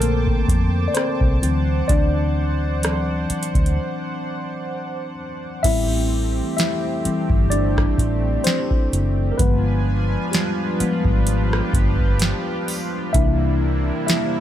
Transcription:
0.00 0.35 A#1 medium
0.00 1.44 D3 medium
0.00 1.38 F3 medium
0.00 1.44 A3 medium
0.00 0.86 A#3 medium
0.00 0.96 C4 medium
0.00 1.44 A4 medium
0.00 0.91 A#4 medium
0.00 1.38 C5 medium
0.00 1.38 G5 medium
0.00 5.60 A5 medium
0.00 5.60 D6 medium
0.00 closed hi-hat medium
0.27 kick medium
0.48 0.86 F2 medium
0.48 kick medium
0.48 closed hi-hat medium
0.88 0.95 D5 medium
0.94 1.42 C4 medium
0.94 1.91 C5 medium
0.94 cross-stick loud
0.94 closed hi-hat medium
1.21 1.38 C2 medium
1.21 kick medium
1.42 1.80 D2 medium
1.42 2.79 E3 medium
1.42 2.79 F#3 medium
1.42 2.79 C4 medium
1.42 5.60 C5 medium
1.42 5.60 F#5 medium
1.42 closed hi-hat medium
1.88 3.26 D2 loud
1.88 5.14 D4 medium
1.88 5.13 D5 loud
1.88 kick loud
1.88 closed hi-hat medium
2.83 3.26 E3 soft
2.83 3.26 F#3 soft
2.83 3.26 C4 soft
2.83 cross-stick loud
2.83 closed hi-hat medium
3.30 muted fingered electric bass stroke soft
3.30 closed hi-hat medium
3.43 closed hi-hat medium
3.55 3.77 D2 medium
3.55 kick medium
3.55 closed hi-hat soft
3.66 closed hi-hat soft
5.63 6.40 A1 loud
5.63 7.01 E3 medium
5.63 7.01 G3 medium
5.63 9.35 A3 medium
5.63 9.35 C4 medium
5.63 7.01 C4 medium
5.63 6.54 E4 medium
5.63 9.35 G4 medium
5.63 6.55 E5 loud
5.63 kick loud
5.63 closed hi-hat medium
5.63 crash medium
6.57 7.48 E4 medium
6.57 7.47 E5 medium
6.57 snare loud
6.57 closed hi-hat medium
7.04 7.48 E3 medium
7.04 7.48 G3 soft
7.04 7.48 C4 medium
7.04 muted fingered electric bass stroke soft
7.04 closed hi-hat medium
7.30 7.85 G1 medium
7.30 kick medium
7.50 8.42 D4 medium
7.50 8.41 D5 loud
7.50 closed hi-hat medium
7.77 kick medium
7.77 cross-stick loud
7.98 8.36 A1 loud
7.98 kick medium
7.98 closed hi-hat medium
8.44 9.29 C4 medium
8.44 9.35 C5 medium
8.44 snare loud
8.44 closed hi-hat medium
8.71 kick medium
8.93 9.30 F#1 medium
8.93 closed hi-hat medium
9.32 9.39 A#4 medium
9.38 10.15 G1 loud
9.38 10.03 F3 medium
9.38 13.10 F3 medium
9.38 10.03 G#3 medium
9.38 10.29 B3 medium
9.38 13.10 D4 medium
9.38 13.10 F4 medium
9.38 10.28 B4 loud
9.38 13.10 B4 medium
9.38 11.25 G#5 medium
9.38 kick loud
9.38 closed hi-hat medium
10.32 12.17 G3 medium
10.32 12.16 G4 medium
10.32 snare loud
10.32 closed hi-hat medium
10.80 11.23 F3 medium
10.80 11.23 G#3 soft
10.80 11.23 B3 medium
10.80 muted fingered electric bass stroke soft
10.80 closed hi-hat medium
11.05 11.60 G#1 medium
11.05 kick medium
11.27 13.12 G4 medium
11.27 closed hi-hat medium
11.53 cross-stick loud
11.73 12.32 G1 medium
11.73 kick medium
11.73 closed hi-hat medium
11.99 kick medium
12.19 snare loud
12.19 closed hi-hat medium
12.68 open hi-hat medium
13.13 13.90 C2 loud
13.13 14.40 C3 medium
13.13 13.78 E3 medium
13.13 14.40 G3 medium
13.13 14.40 A#3 medium
13.13 13.78 A#3 medium
13.13 14.40 D4 medium
13.13 13.78 D4 medium
13.13 14.40 E4 medium
13.13 14.04 E4 medium
13.13 14.05 E5 medium
13.13 kick loud
13.13 closed hi-hat medium
14.07 14.40 E4 medium
14.07 14.40 E5 medium
14.07 snare loud
14.07 closed hi-hat medium

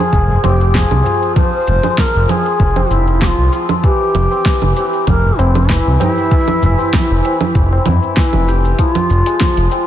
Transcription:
0.00 0.74 F3 medium
0.00 1.83 G#3 medium
0.00 0.44 C4 medium
0.00 0.46 G#4 loud
0.13 0.37 F1 medium
0.13 kick loud
0.13 shaker soft
0.28 tabla ge medium
0.43 0.85 F1 loud
0.43 2.90 C4 medium
0.43 0.77 G4 loud
0.43 tabla na medium
0.43 tabla tin medium
0.43 low conga medium
0.43 shaker medium
0.61 shaker soft
0.74 1.35 F3 medium
0.74 1.36 G#4 loud
0.74 kick loud
0.74 snare loud
0.74 shaker soft
0.91 1.02 C2 medium
0.91 low conga medium
1.04 3.52 F4 medium
1.04 tabla na medium
1.04 tabla ge medium
1.04 shaker medium
1.21 tabla tin soft
1.21 shaker soft
1.36 1.97 F3 medium
1.36 2.01 C5 loud
1.36 kick loud
1.36 low conga medium
1.36 shaker soft
1.53 tabla tin soft
1.67 1.80 F1 medium
1.67 tabla ge medium
1.67 shaker medium
1.83 3.89 G#3 medium
1.83 low conga medium
1.83 shaker soft
1.98 3.20 F3 medium
1.98 2.31 A#4 loud
1.98 kick loud
1.98 snare loud
1.98 shaker soft
2.15 2.26 F1 medium
2.15 shaker soft
2.29 2.93 G#4 loud
2.29 tabla na medium
2.29 low conga medium
2.29 shaker medium
2.46 shaker soft
2.60 2.84 F1 loud
2.60 kick loud
2.60 tabla tin medium
2.60 shaker soft
2.76 tabla na medium
2.76 low conga medium
2.90 3.32 F1 loud
2.90 4.31 C4 medium
2.90 3.25 E4 medium
2.90 tabla ge medium
2.90 shaker medium
3.07 tabla tin medium
3.07 shaker soft
3.21 3.89 F3 medium
3.21 3.27 G4 medium
3.21 kick loud
3.21 snare loud
3.21 low conga medium
3.21 shaker soft
3.26 3.58 F4 medium
3.38 3.49 C2 medium
3.52 3.90 F4 medium
3.52 shaker medium
3.69 low conga medium
3.69 shaker soft
3.84 4.44 E3 medium
3.84 4.73 G4 loud
3.84 kick loud
3.84 shaker soft
4.00 tabla tin soft
4.14 4.27 F1 medium
4.14 low conga medium
4.14 shaker medium
4.31 6.78 C4 medium
4.31 shaker soft
4.45 5.68 E3 medium
4.45 kick loud
4.45 snare loud
4.45 shaker soft
4.62 4.73 F1 loud
4.62 low conga medium
4.62 shaker soft
4.75 5.05 G4 medium
4.75 tabla na medium
4.75 shaker medium
4.93 shaker soft
5.07 5.32 F1 loud
5.07 5.40 A#4 loud
5.07 kick loud
5.07 low conga medium
5.07 shaker soft
5.24 tabla ge medium
5.38 5.80 F1 loud
5.38 5.72 C4 medium
5.38 7.85 E4 medium
5.38 tabla na medium
5.38 tabla tin soft
5.38 shaker medium
5.55 low conga medium
5.55 shaker soft
5.69 6.29 E3 medium
5.69 6.01 E4 medium
5.69 kick loud
5.69 snare loud
5.69 shaker soft
5.87 5.97 C2 medium
5.87 tabla tin medium
6.00 7.83 E4 loud
6.00 8.47 G4 medium
6.00 tabla na medium
6.00 tabla ge loud
6.00 low conga medium
6.00 shaker medium
6.17 tabla tin soft
6.17 shaker soft
6.31 6.92 E3 medium
6.31 kick loud
6.31 shaker soft
6.48 tabla tin soft
6.48 low conga medium
6.62 6.75 F1 medium
6.62 tabla ge medium
6.62 shaker medium
6.78 9.87 C4 medium
6.78 shaker soft
6.93 8.16 E3 medium
6.93 kick loud
6.93 snare loud
6.93 low conga medium
6.93 shaker soft
7.10 7.21 F1 loud
7.10 shaker soft
7.24 tabla na medium
7.24 shaker medium
7.41 low conga medium
7.41 shaker soft
7.55 7.79 F1 loud
7.55 kick loud
7.55 tabla tin medium
7.55 shaker soft
7.73 tabla na medium
7.85 7.99 F2 medium
7.85 7.94 C4 medium
7.85 8.85 E4 medium
7.85 low conga medium
7.85 tabla ge medium
7.85 shaker medium
8.02 tabla tin medium
8.02 shaker soft
8.17 8.84 E3 medium
8.17 8.24 F4 medium
8.17 kick loud
8.17 snare loud
8.17 shaker soft
8.22 8.50 E4 medium
8.33 8.73 F1 medium
8.33 low conga medium
8.48 9.32 G4 medium
8.48 shaker medium
8.64 shaker soft
8.79 9.39 F3 medium
8.79 8.95 E4 medium
8.79 kick loud
8.79 closed hi-hat soft
8.79 shaker soft
8.95 9.68 F4 medium
8.95 closed hi-hat soft
8.95 tabla tin soft
8.95 low conga medium
9.10 9.23 F1 loud
9.10 shaker medium
9.26 9.87 G#3 medium
9.26 closed hi-hat soft
9.26 shaker soft
9.41 9.87 F3 medium
9.41 kick loud
9.41 snare loud
9.41 closed hi-hat medium
9.41 low conga medium
9.41 shaker soft
9.57 9.68 F1 medium
9.57 closed hi-hat soft
9.57 shaker soft
9.71 9.87 F4 medium
9.71 tabla na medium
9.71 shaker medium

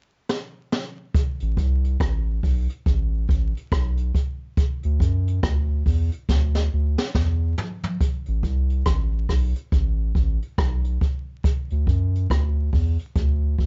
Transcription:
0.29 snare medium
0.72 snare medium
1.14 kick loud
1.14 closed hi-hat loud
1.40 1.57 A1 medium
1.40 closed hi-hat soft
1.57 1.97 C2 loud
1.57 kick medium
1.57 closed hi-hat medium
1.84 closed hi-hat soft
2.00 2.40 A1 loud
2.00 kick loud
2.00 cross-stick loud
2.00 closed hi-hat medium
2.43 2.67 B1 loud
2.43 kick medium
2.43 open hi-hat medium
2.70 closed hi-hat medium
2.86 3.26 A1 medium
2.86 kick loud
2.86 closed hi-hat medium
3.29 3.53 A1 medium
3.29 kick medium
3.29 closed hi-hat medium
3.57 closed hi-hat soft
3.72 4.12 B1 medium
3.72 kick loud
3.72 cross-stick loud
3.72 closed hi-hat medium
3.97 closed hi-hat medium
4.15 kick medium
4.15 closed hi-hat medium
4.57 kick loud
4.57 closed hi-hat loud
4.83 5.00 D2 loud
4.83 closed hi-hat soft
5.00 5.40 F#2 medium
5.00 kick medium
5.00 closed hi-hat medium
5.27 closed hi-hat medium
5.43 5.83 D2 medium
5.43 kick loud
5.43 cross-stick loud
5.43 closed hi-hat medium
5.86 6.10 E2 medium
5.86 kick medium
5.86 open hi-hat medium
6.12 closed hi-hat medium
6.29 6.69 D2 medium
6.29 kick medium
6.29 snare soft
6.55 snare soft
6.73 6.97 D2 medium
6.98 snare medium
7.15 7.55 E2 medium
7.15 kick loud
7.15 snare medium
7.58 floor tom loud
7.83 floor tom medium
8.01 kick loud
8.01 closed hi-hat medium
8.26 8.43 A1 medium
8.26 closed hi-hat soft
8.43 8.83 C2 medium
8.43 kick medium
8.43 closed hi-hat medium
8.70 closed hi-hat medium
8.85 9.26 A1 medium
8.85 kick loud
8.85 cross-stick loud
8.85 closed hi-hat medium
9.29 9.54 B1 loud
9.29 kick medium
9.29 cross-stick medium
9.29 open hi-hat medium
9.56 closed hi-hat medium
9.72 10.12 A1 medium
9.72 kick medium
9.72 closed hi-hat medium
10.15 10.39 A1 medium
10.15 kick medium
10.15 closed hi-hat medium
10.42 closed hi-hat soft
10.58 10.98 B1 loud
10.58 kick loud
10.58 cross-stick loud
10.58 closed hi-hat medium
10.84 closed hi-hat medium
11.01 kick medium
11.01 closed hi-hat medium
11.44 kick loud
11.44 closed hi-hat medium
11.70 11.87 D2 medium
11.70 closed hi-hat soft
11.87 12.27 F#2 medium
11.87 kick medium
11.87 closed hi-hat medium
12.15 closed hi-hat soft
12.30 12.70 D2 medium
12.30 kick medium
12.30 cross-stick medium
12.30 closed hi-hat medium
12.73 12.97 E2 medium
12.73 kick medium
12.73 open hi-hat medium
12.99 closed hi-hat medium
13.15 13.56 D2 medium
13.15 kick loud
13.15 closed hi-hat medium
13.58 13.66 D2 medium
13.58 kick medium
13.58 open hi-hat soft

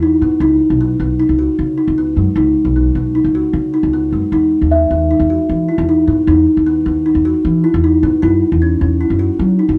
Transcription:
0.00 0.19 E2 medium
0.00 0.19 D#4 medium
0.21 0.31 G#2 medium
0.21 0.39 B3 medium
0.40 0.59 C#2 medium
0.40 0.75 D#4 medium
0.70 0.97 B1 medium
0.81 0.97 B3 medium
1.00 1.27 B1 medium
1.00 1.17 B3 medium
1.19 1.36 D#4 medium
1.29 1.47 C#2 medium
1.39 1.72 F#4 medium
1.59 1.76 C#3 medium
1.78 1.94 D#4 medium
1.88 2.14 C#2 medium
1.98 2.14 B3 medium
2.16 2.26 F#2 medium
2.16 2.34 G#3 medium
2.36 2.54 C#2 medium
2.36 2.70 D#4 medium
2.65 2.92 B1 medium
2.76 2.92 B3 medium
2.95 3.22 B1 medium
2.95 3.12 B3 medium
3.15 3.31 D#4 medium
3.24 3.42 C#2 medium
3.35 3.68 F#4 medium
3.53 3.71 C#3 medium
3.74 3.90 D#4 medium
3.83 4.10 C#2 medium
3.93 4.10 B3 medium
4.12 4.21 F#2 medium
4.12 4.30 G#3 medium
4.32 4.50 E2 medium
4.32 4.66 D#4 medium
4.61 4.88 D#2 medium
4.71 4.88 B3 medium
4.71 6.15 E5 soft
4.91 5.17 D#2 medium
4.91 5.07 B3 medium
5.11 5.27 D#4 medium
5.20 5.37 E2 medium
5.30 5.63 F#4 medium
5.49 5.67 E3 medium
5.69 5.85 E4 medium
5.78 6.05 E2 medium
5.89 6.05 D#4 medium
6.07 6.16 G#2 medium
6.07 6.24 B3 medium
6.27 6.45 E2 medium
6.27 6.61 D#4 medium
6.57 6.83 D#2 medium
6.66 6.83 B3 medium
6.86 7.13 D#2 medium
6.86 7.02 B3 medium
7.06 7.22 D#4 medium
7.15 7.33 E2 medium
7.25 7.58 F#4 medium
7.45 7.62 E3 medium
7.64 7.80 E4 medium
7.74 8.00 E2 medium
7.84 8.00 D#4 medium
8.03 8.12 G#2 medium
8.03 8.20 B3 medium
8.22 8.40 F#2 medium
8.22 8.55 E4 medium
8.52 8.79 E2 medium
8.62 8.78 C#4 medium
8.81 9.08 E2 medium
8.81 8.98 C#4 medium
9.01 9.17 E4 medium
9.10 9.28 F#2 medium
9.19 9.53 F#4 medium
9.39 9.57 F#3 medium
9.59 9.76 D#4 medium
9.69 9.78 F#2 medium

